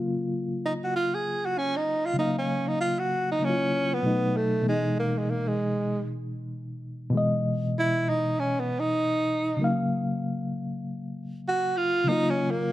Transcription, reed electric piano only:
0.00 2.12 C#3 medium
0.00 2.13 F#3 medium
0.00 2.14 A#3 medium
0.00 2.16 F4 medium
2.14 3.37 C#3 medium
2.14 3.38 F#3 medium
2.19 3.40 A#3 medium
2.19 3.41 F5 medium
3.39 4.03 C#3 soft
3.39 4.02 F#3 soft
3.39 4.04 A#3 soft
3.43 3.50 E4 soft
3.50 4.08 F4 soft
4.03 4.61 B2 medium
4.03 4.66 F#3 medium
4.03 4.66 A3 medium
4.03 4.67 D#4 medium
4.62 7.07 B2 medium
4.62 7.08 E3 medium
4.67 7.10 G#3 medium
4.67 7.11 D#4 medium
7.10 9.55 B2 medium
7.10 9.56 E3 medium
7.15 9.57 G#3 medium
7.15 9.59 D#5 medium
9.57 12.02 C#3 medium
9.57 12.03 F#3 medium
9.62 12.04 A#3 medium
9.62 12.06 F5 medium
12.04 12.72 C#3 medium
12.04 12.72 F#3 medium
12.09 12.72 A#3 medium
12.09 12.72 F4 medium

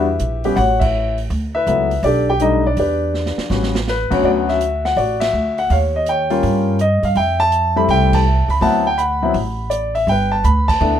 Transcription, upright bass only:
0.00 0.17 E2 medium
0.20 0.54 A#1 medium
0.57 1.26 A1 medium
1.30 1.64 D2 medium
1.67 2.01 C#2 medium
2.03 2.73 B1 medium
2.77 3.34 E2 medium
3.37 muted upright bass stroke soft
3.50 4.07 A1 medium
4.11 4.23 C#2 medium
4.23 4.93 D2 medium
4.96 5.31 A1 medium
5.33 5.67 D2 medium
5.70 6.39 D#2 medium
6.43 7.00 G2 medium
7.03 7.15 G2 medium
7.15 7.85 F2 medium
7.88 8.46 C2 medium
8.48 8.61 C#2 medium
8.61 9.31 D2 medium
9.34 10.04 A1 medium
10.07 10.42 G1 medium
10.44 10.79 D2 medium
10.81 11.00 D2 medium

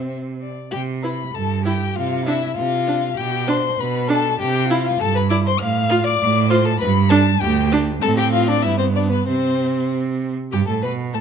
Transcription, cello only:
0.00 0.50 C3 medium
0.73 1.24 C3 medium
1.35 1.86 G2 loud
1.96 2.47 C3 loud
2.57 3.08 C3 medium
3.18 3.69 B2 medium
3.80 4.30 B2 loud
4.41 4.91 C3 loud
5.01 5.51 G2 loud
5.61 6.11 A2 loud
6.21 6.71 A2 loud
6.82 7.32 G2 loud
7.42 7.92 D2 loud
8.03 8.66 A2 loud
8.65 9.27 G2 loud
9.28 10.31 C3 medium
10.53 10.67 G2 loud
10.68 10.85 A2 medium
10.84 11.15 B2 loud
11.14 11.21 A2 medium

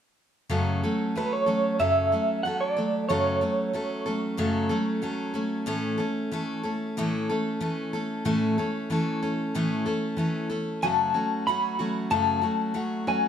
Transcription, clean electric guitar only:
1.18 1.32 B4 medium
1.33 1.77 C#5 medium
1.80 2.40 E5 medium
2.43 2.58 F#5 medium
2.61 3.08 D5 medium
3.09 4.98 C#5 medium
10.83 11.46 A5 medium
11.47 12.11 B5 medium
12.11 13.08 A5 medium
13.08 13.28 G#5 medium

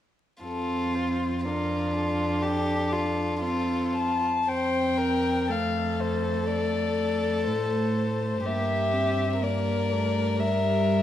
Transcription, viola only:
0.44 1.47 C4 soft
1.45 3.43 D4 soft
3.41 4.27 C4 soft
4.49 5.51 C4 soft
5.50 8.45 A3 soft
8.45 8.94 A#3 soft
8.93 9.44 C4 soft
9.42 9.93 A#3 soft
9.92 10.40 A3 soft
10.39 11.03 G3 soft

